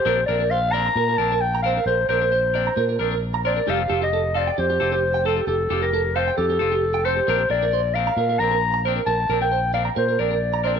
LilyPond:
<<
  \new Staff \with { instrumentName = "Clarinet" } { \time 4/4 \key bes \lydian \tempo 4 = 133 c''8 d''8 f''8 bes''4 a''8 g''8 f''8 | c''8 c''2 r4 d''8 | f''8. ees''8. d''8 c''8. c''8. a'8 | a'8. bes'8. c''8 a'4. c''8~ |
c''8 d''4 f''4 bes''4 r8 | a''8. g''8. f''8 c''8 d''4 d''8 | }
  \new Staff \with { instrumentName = "Clean electric guitar" } { \time 4/4 \key bes \lydian bes'16 r16 bes'16 bes'16 c''16 r16 d''16 bes''16 bes'16 bes'16 bes'16 bes'16 r16 bes''16 c''16 bes'16 | bes'16 r16 bes'16 bes'16 c''16 r16 d''16 bes''16 bes'16 bes'16 bes'16 bes'16 r16 bes''16 c''16 bes'16 | g'16 r16 g'16 g'16 a'16 r16 f''16 g''16 g'16 g'16 g'16 g'16 r16 g''16 a'16 g'16 | g'16 r16 g'16 g'16 a'16 r16 f''16 g''16 g'16 g'16 g'16 g'16 r16 g''16 c''16 g'16 |
bes'16 r8 bes'16 c''16 r16 d''16 bes''16 bes'16 bes'16 bes'16 bes'16 r16 bes''16 c''16 bes'16 | bes'16 r16 bes'16 bes'16 c''16 r16 d''16 bes''16 bes'16 bes'16 bes'16 bes'16 r16 bes''16 c''16 bes'16 | }
  \new Staff \with { instrumentName = "Clean electric guitar" } { \time 4/4 \key bes \lydian <f c' d' bes'>8 <c' d' bes'>8 r8 <c' d' bes'>8 r8 <c' d' bes'>8 r8 <c' d' bes'>8 | r8 <c' d' bes'>8 r8 <c' d' bes'>8 r8 <c' d' bes'>8 r8 <c' d' bes'>8 | <g c' f' a'>8 <c' f' a'>8 r8 <c' f' a'>8 r8 <c' f' a'>8 r8 <c' f' a'>8 | r8 <c' f' a'>8 r8 <c' f' a'>8 r8 <c' f' a'>8 r8 <c' a'>8 |
<c' d' bes'>8 <c' d' bes'>8 r8 <c' d' bes'>8 r8 <c' d'>8 r8 <c' d' bes'>8 | r8 <c' d' bes'>8 r8 <c' d' bes'>8 r8 <c' d' bes'>8 r8 <c' d' bes'>8 | }
  \new Staff \with { instrumentName = "Fingered electric bass" } { \clef bass \time 4/4 \key bes \lydian bes,,8 bes,,4. bes,8 bes,,4. | bes,,8 bes,,4. bes,8 bes,,4. | f,,8 f,,4. f,8 f,,4. | f,,8 f,,4. f,8 f,,4. |
bes,,8 bes,,4. bes,8 bes,,4. | bes,,8 bes,,4. bes,8 bes,,4. | }
>>